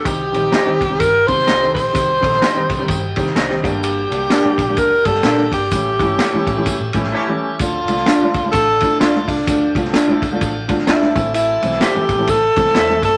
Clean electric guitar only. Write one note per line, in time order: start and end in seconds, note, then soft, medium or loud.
0.53 0.70 D#4 medium
0.53 0.70 G4 medium
0.53 0.71 C5 medium
0.53 0.71 D#5 loud
1.47 1.64 D#4 medium
1.47 1.65 G4 medium
1.47 1.65 C5 loud
1.47 1.65 D#5 loud
2.42 2.59 D#4 medium
2.42 2.59 G4 medium
2.42 2.60 C5 medium
2.42 2.60 D#5 medium
3.36 3.53 D#4 medium
3.36 3.53 G4 loud
3.36 3.54 C5 loud
3.36 3.54 D#5 loud
4.30 4.47 D4 medium
4.30 4.48 G4 medium
4.30 4.48 A#4 medium
4.30 4.48 D5 medium
5.24 5.42 D4 medium
5.24 5.42 G4 medium
5.24 5.42 A#4 loud
5.24 5.42 D5 medium
6.19 6.36 A3 medium
6.19 6.36 E4 medium
6.19 6.37 G4 medium
6.19 6.37 C#5 medium
7.12 7.30 A3 medium
7.12 7.30 E4 medium
7.12 7.31 G4 loud
7.12 7.31 C#5 loud
8.06 8.24 D4 medium
8.06 8.24 F4 medium
8.06 8.25 A4 loud
8.06 8.25 D5 medium
9.00 9.18 D4 medium
9.00 9.18 F4 medium
9.00 9.18 A4 loud
9.00 9.19 D5 loud
9.94 10.11 D4 medium
9.94 10.12 F4 medium
9.94 10.12 A4 medium
9.94 10.12 D5 medium
10.87 11.05 D4 medium
10.87 11.05 F4 medium
10.87 11.06 A4 medium
10.87 11.06 D5 medium
11.81 11.99 E4 medium
11.81 11.99 A4 medium
11.81 11.99 C5 medium
11.81 12.00 E5 medium
12.75 12.92 E4 medium
12.75 12.93 A4 medium
12.75 12.93 C5 loud
12.75 12.93 E5 loud